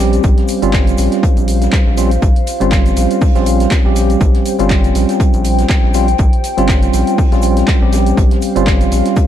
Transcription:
Already playing: A#1 G3 C4 C#4 G4 C5 G5
0.00 closed hi-hat
0.13 closed hi-hat, shaker
0.23 A#1 F5, kick, closed hi-hat, shaker
0.38 snare, closed hi-hat
0.48 closed hi-hat, open hi-hat, shaker
0.62 G1 G3 C4 C#4 F4, closed hi-hat, shaker
0.73 kick, snare, clap, closed hi-hat, shaker
0.87 closed hi-hat, shaker
0.98 A#1, closed hi-hat, open hi-hat, shaker
1.12 snare, closed hi-hat, shaker
1.23 kick, closed hi-hat, shaker
1.37 A#1, closed hi-hat, shaker
1.48 closed hi-hat, open hi-hat, shaker
1.62 snare, closed hi-hat, shaker
1.73 kick, snare, clap, closed hi-hat, shaker
1.86 A#1, snare
1.97 G3 C4 C#4 F4, closed hi-hat, open hi-hat, shaker
2.11 closed hi-hat, shaker
2.22 A#1, kick, closed hi-hat, shaker
2.36 closed hi-hat
2.47 closed hi-hat, open hi-hat, shaker
2.60 G1 G3 C4 C#4 F4, closed hi-hat, shaker
2.71 kick, snare, clap, closed hi-hat, shaker
2.86 closed hi-hat, shaker
2.97 A#1, closed hi-hat, open hi-hat, shaker
3.10 closed hi-hat, shaker
3.21 kick, open hi-hat, shaker
3.35 A#1 G3 C4 C#4 F4, snare, closed hi-hat, shaker
3.46 closed hi-hat, open hi-hat, shaker
3.60 snare, closed hi-hat, shaker
3.71 kick, snare, clap, closed hi-hat, shaker
3.84 A#1 G3 C4 C#4 G4
3.96 closed hi-hat, open hi-hat, shaker
4.10 closed hi-hat, shaker
4.21 A#1 G5, kick, closed hi-hat, shaker
4.34 snare, closed hi-hat
4.46 closed hi-hat, open hi-hat, shaker
4.59 G1 G3 C4 C#4 F4, closed hi-hat, shaker
4.70 kick, snare, clap, closed hi-hat, shaker
4.84 closed hi-hat, shaker
4.95 A#1, closed hi-hat, open hi-hat, shaker
5.09 snare, closed hi-hat, shaker
5.20 kick, closed hi-hat, shaker
5.33 A#1, closed hi-hat, shaker
5.44 closed hi-hat, open hi-hat, shaker
5.58 snare, closed hi-hat, shaker
5.69 kick, snare, clap, closed hi-hat, shaker
5.83 A#1, snare
5.94 G3 C4 C#4 F4, closed hi-hat, open hi-hat, shaker
6.08 closed hi-hat, shaker
6.18 A#1, kick, closed hi-hat, shaker
6.33 closed hi-hat
6.44 closed hi-hat, open hi-hat, shaker
6.57 G1 G3 C4 C#4 F4, closed hi-hat, shaker
6.68 kick, snare, clap, closed hi-hat, shaker
6.82 closed hi-hat, shaker
6.93 A#1, closed hi-hat, open hi-hat, shaker
7.07 closed hi-hat, shaker
7.18 kick, open hi-hat, shaker
7.32 A#1 G3 C4 C#4 F4, snare, closed hi-hat, shaker
7.42 closed hi-hat, open hi-hat, shaker
7.57 snare, closed hi-hat, shaker
7.67 kick, snare, clap, closed hi-hat, shaker
7.81 A#1 G3 C4 C#4 G4
7.93 snare, closed hi-hat, open hi-hat, shaker
8.06 closed hi-hat, shaker
8.17 A#1 F5, kick, closed hi-hat, shaker
8.31 snare, closed hi-hat
8.42 closed hi-hat, open hi-hat, shaker
8.55 G1 G3 C4 C#4 F4, closed hi-hat, shaker
8.67 kick, snare, clap, closed hi-hat, shaker
8.81 closed hi-hat, shaker
8.92 A#1, closed hi-hat, open hi-hat, shaker
9.05 snare, closed hi-hat, shaker
9.16 kick, closed hi-hat, shaker

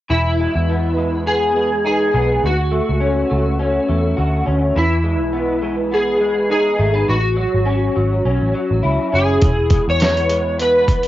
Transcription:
0.10 E1 E3 E4
0.40 G#3
0.55 E2
0.69 B3
0.97 G#3
1.26 B3 G#4
1.56 G#3
1.85 D#4 G#4
2.14 B1 B3
2.44 D2 F#4
2.71 A3
2.89 C#2
3.00 C#4
3.30 C#2 A3
3.59 C#4
3.89 E2 A3
4.17 D2 F#4
4.46 D2 C#4
4.76 E2 E3 E4
5.04 G#3
5.21 B1
5.33 B3
5.62 G#3
5.91 B3 G#4
6.21 G#3
6.50 D#4 G#4
6.78 G#1 A3
6.94 B3
7.09 A1 F#4
7.36 F#3
7.54 G#1
7.65 C#4
7.96 G#1 F#3
8.25 B1 C#4
8.41 A1
8.54 F#3
8.71 A1
8.83 C#2 E4
9.12 F#1 C#4 G#4
9.41 E1 E3, kick, closed hi-hat
9.70 G#3, kick, closed hi-hat
9.88 E2 C#5
10.00 B3, snare, closed hi-hat
10.17 closed hi-hat
10.29 G#3, closed hi-hat
10.58 B3 B4, closed hi-hat
10.88 kick, closed hi-hat
11.03 closed hi-hat

